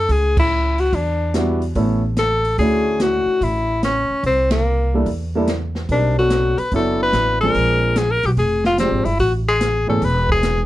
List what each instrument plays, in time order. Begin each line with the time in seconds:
Already playing: tenor saxophone A4
0.09 upright bass C#2, tenor saxophone G#4, kick, open hi-hat
0.37 tenor saxophone E4, kick, crash
0.78 tenor saxophone F#4, open hi-hat
0.92 upright bass E2, tenor saxophone D4, kick, open hi-hat
1.34 grand piano G3 B3 D4 E4 F#4, snare, closed hi-hat
1.62 open hi-hat
1.75 upright bass A1, grand piano A3 B3 C#4 E4 A4, kick, open hi-hat
2.17 tenor saxophone A4, snare, closed hi-hat
2.45 open hi-hat
2.58 upright bass D2, grand piano A3 C#4 D4 E4 F#4, tenor saxophone G#4, kick, open hi-hat
3.00 tenor saxophone F#4, snare, closed hi-hat
3.26 muted upright bass stroke
3.41 upright bass A1, tenor saxophone E4, kick, open hi-hat
3.83 tenor saxophone C#4, snare, closed hi-hat
4.10 muted upright bass stroke
4.23 upright bass C2, tenor saxophone C4, kick, open hi-hat
4.51 tenor saxophone A#3, snare, ride
4.94 grand piano G3 A#3 D4 E4 A4
5.06 upright bass E2, kick, open hi-hat
5.35 grand piano G3 A#3 D4 E4 A4
5.48 snare, closed hi-hat
5.75 snare
5.89 upright bass B1, grand piano G3 C4 D4 D#4 A#4, tenor saxophone D4, kick, open hi-hat
6.18 grand piano F#3 B3 C#4 D4 A4, tenor saxophone F#4
6.30 snare, closed hi-hat
6.58 tenor saxophone B4, muted upright bass stroke, open hi-hat
6.72 upright bass F#1, grand piano F#3 B3 C#4 D4 E4, kick, open hi-hat
6.76 tenor saxophone A4
7.03 tenor saxophone B4
7.12 upright bass A1, snare, closed hi-hat
7.41 grand piano F3 G#3 C4 D4 G#4, tenor saxophone A#4
7.54 upright bass A#1, kick, open hi-hat
7.96 tenor saxophone G#4, snare, closed hi-hat
8.11 tenor saxophone A#4
8.23 upright bass B1, tenor saxophone G4, open hi-hat
8.28 tenor saxophone F#4
8.37 upright bass F1, tenor saxophone G#4, kick, open hi-hat
8.64 tenor saxophone F4, snare
8.78 grand piano F3 G#3 C4 D4 G4, tenor saxophone C4, snare, closed hi-hat
8.91 upright bass G#1
9.05 upright bass G1, tenor saxophone E4, open hi-hat
9.19 upright bass A1, tenor saxophone F#4, kick, open hi-hat
9.49 tenor saxophone G#4
9.61 snare, closed hi-hat
9.87 upright bass G#1, grand piano E3 A3 B3 C#4 G#4, tenor saxophone A4
10.02 upright bass E1, tenor saxophone B4, kick, open hi-hat
10.29 tenor saxophone G#4, kick
10.43 snare, closed hi-hat